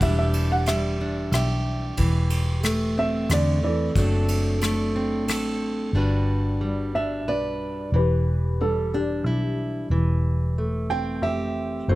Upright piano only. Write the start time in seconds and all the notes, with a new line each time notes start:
0.02 G4 E5
0.19 E5
0.52 F#5
0.68 E5
1.34 E5
2.99 E5
3.33 D5
3.64 A4 D5
6.95 E5
7.29 D5
7.96 G4 B4
8.61 A4
8.94 G4
10.90 G5
11.23 E5
11.89 A4 C5